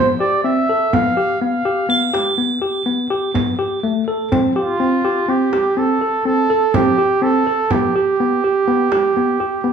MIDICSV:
0, 0, Header, 1, 5, 480
1, 0, Start_track
1, 0, Tempo, 484262
1, 922, Time_signature, 7, 2, 24, 8
1, 9642, End_track
2, 0, Start_track
2, 0, Title_t, "Crotales"
2, 0, Program_c, 0, 9
2, 1881, Note_on_c, 0, 105, 71
2, 2735, Note_off_c, 0, 105, 0
2, 9642, End_track
3, 0, Start_track
3, 0, Title_t, "Flugelhorn"
3, 0, Program_c, 1, 56
3, 193, Note_on_c, 1, 74, 98
3, 420, Note_off_c, 1, 74, 0
3, 437, Note_on_c, 1, 76, 99
3, 925, Note_on_c, 1, 77, 114
3, 940, Note_off_c, 1, 76, 0
3, 1399, Note_off_c, 1, 77, 0
3, 1405, Note_on_c, 1, 77, 95
3, 2325, Note_off_c, 1, 77, 0
3, 4535, Note_on_c, 1, 65, 107
3, 5249, Note_on_c, 1, 67, 100
3, 5264, Note_off_c, 1, 65, 0
3, 5730, Note_on_c, 1, 69, 106
3, 5744, Note_off_c, 1, 67, 0
3, 6203, Note_off_c, 1, 69, 0
3, 6209, Note_on_c, 1, 69, 109
3, 6689, Note_on_c, 1, 67, 109
3, 6704, Note_off_c, 1, 69, 0
3, 7168, Note_on_c, 1, 69, 110
3, 7182, Note_off_c, 1, 67, 0
3, 7651, Note_on_c, 1, 67, 98
3, 7666, Note_off_c, 1, 69, 0
3, 9642, Note_off_c, 1, 67, 0
3, 9642, End_track
4, 0, Start_track
4, 0, Title_t, "Tine electric piano"
4, 0, Program_c, 2, 4
4, 0, Note_on_c, 2, 59, 71
4, 159, Note_off_c, 2, 59, 0
4, 203, Note_on_c, 2, 67, 77
4, 398, Note_off_c, 2, 67, 0
4, 442, Note_on_c, 2, 60, 77
4, 637, Note_off_c, 2, 60, 0
4, 688, Note_on_c, 2, 69, 73
4, 881, Note_off_c, 2, 69, 0
4, 923, Note_on_c, 2, 59, 90
4, 1119, Note_off_c, 2, 59, 0
4, 1159, Note_on_c, 2, 67, 75
4, 1356, Note_off_c, 2, 67, 0
4, 1401, Note_on_c, 2, 59, 79
4, 1597, Note_off_c, 2, 59, 0
4, 1638, Note_on_c, 2, 67, 78
4, 1836, Note_off_c, 2, 67, 0
4, 1874, Note_on_c, 2, 59, 81
4, 2073, Note_off_c, 2, 59, 0
4, 2118, Note_on_c, 2, 67, 81
4, 2316, Note_off_c, 2, 67, 0
4, 2357, Note_on_c, 2, 59, 75
4, 2555, Note_off_c, 2, 59, 0
4, 2594, Note_on_c, 2, 67, 69
4, 2793, Note_off_c, 2, 67, 0
4, 2835, Note_on_c, 2, 59, 81
4, 3034, Note_off_c, 2, 59, 0
4, 3077, Note_on_c, 2, 67, 79
4, 3275, Note_off_c, 2, 67, 0
4, 3314, Note_on_c, 2, 59, 79
4, 3514, Note_off_c, 2, 59, 0
4, 3556, Note_on_c, 2, 67, 73
4, 3754, Note_off_c, 2, 67, 0
4, 3800, Note_on_c, 2, 57, 83
4, 3997, Note_off_c, 2, 57, 0
4, 4042, Note_on_c, 2, 69, 76
4, 4238, Note_off_c, 2, 69, 0
4, 4281, Note_on_c, 2, 60, 94
4, 4477, Note_off_c, 2, 60, 0
4, 4522, Note_on_c, 2, 67, 79
4, 4718, Note_off_c, 2, 67, 0
4, 4758, Note_on_c, 2, 60, 85
4, 4956, Note_off_c, 2, 60, 0
4, 5001, Note_on_c, 2, 67, 76
4, 5198, Note_off_c, 2, 67, 0
4, 5237, Note_on_c, 2, 60, 81
4, 5435, Note_off_c, 2, 60, 0
4, 5483, Note_on_c, 2, 67, 77
4, 5679, Note_off_c, 2, 67, 0
4, 5720, Note_on_c, 2, 60, 79
4, 5917, Note_off_c, 2, 60, 0
4, 5962, Note_on_c, 2, 69, 70
4, 6158, Note_off_c, 2, 69, 0
4, 6199, Note_on_c, 2, 60, 78
4, 6396, Note_off_c, 2, 60, 0
4, 6444, Note_on_c, 2, 69, 83
4, 6639, Note_off_c, 2, 69, 0
4, 6683, Note_on_c, 2, 60, 86
4, 6878, Note_off_c, 2, 60, 0
4, 6921, Note_on_c, 2, 67, 74
4, 7117, Note_off_c, 2, 67, 0
4, 7157, Note_on_c, 2, 60, 84
4, 7355, Note_off_c, 2, 60, 0
4, 7402, Note_on_c, 2, 69, 75
4, 7597, Note_off_c, 2, 69, 0
4, 7644, Note_on_c, 2, 59, 85
4, 7839, Note_off_c, 2, 59, 0
4, 7885, Note_on_c, 2, 67, 79
4, 8079, Note_off_c, 2, 67, 0
4, 8128, Note_on_c, 2, 59, 81
4, 8321, Note_off_c, 2, 59, 0
4, 8369, Note_on_c, 2, 67, 72
4, 8561, Note_off_c, 2, 67, 0
4, 8599, Note_on_c, 2, 59, 97
4, 8795, Note_off_c, 2, 59, 0
4, 8843, Note_on_c, 2, 67, 83
4, 9037, Note_off_c, 2, 67, 0
4, 9086, Note_on_c, 2, 59, 81
4, 9279, Note_off_c, 2, 59, 0
4, 9320, Note_on_c, 2, 67, 69
4, 9516, Note_off_c, 2, 67, 0
4, 9556, Note_on_c, 2, 59, 91
4, 9642, Note_off_c, 2, 59, 0
4, 9642, End_track
5, 0, Start_track
5, 0, Title_t, "Frame drum"
5, 924, Note_on_c, 9, 64, 59
5, 1024, Note_off_c, 9, 64, 0
5, 1168, Note_on_c, 9, 64, 19
5, 1267, Note_off_c, 9, 64, 0
5, 2124, Note_on_c, 9, 64, 55
5, 2224, Note_off_c, 9, 64, 0
5, 3322, Note_on_c, 9, 64, 65
5, 3421, Note_off_c, 9, 64, 0
5, 4283, Note_on_c, 9, 64, 63
5, 4382, Note_off_c, 9, 64, 0
5, 4519, Note_on_c, 9, 64, 21
5, 4618, Note_off_c, 9, 64, 0
5, 5480, Note_on_c, 9, 64, 56
5, 5579, Note_off_c, 9, 64, 0
5, 6682, Note_on_c, 9, 64, 72
5, 6781, Note_off_c, 9, 64, 0
5, 7637, Note_on_c, 9, 64, 65
5, 7736, Note_off_c, 9, 64, 0
5, 8840, Note_on_c, 9, 64, 60
5, 8939, Note_off_c, 9, 64, 0
5, 9079, Note_on_c, 9, 64, 22
5, 9178, Note_off_c, 9, 64, 0
5, 9322, Note_on_c, 9, 64, 23
5, 9421, Note_off_c, 9, 64, 0
5, 9563, Note_on_c, 9, 64, 26
5, 9642, Note_off_c, 9, 64, 0
5, 9642, End_track
0, 0, End_of_file